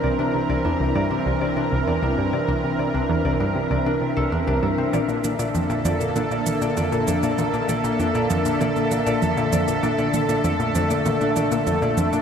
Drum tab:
SH |----------------|----------------|xxxxxxxxxxxxxxxx|xxxxxxxxxxxxxxxx|
T1 |----------------|----------------|o-o-o-o-o-o-o-o-|o-o-o-o-o-o-o-o-|

SH |xxxxxxxxxxxxxxxx|
T1 |o-o-o-o-o-o-o-o-|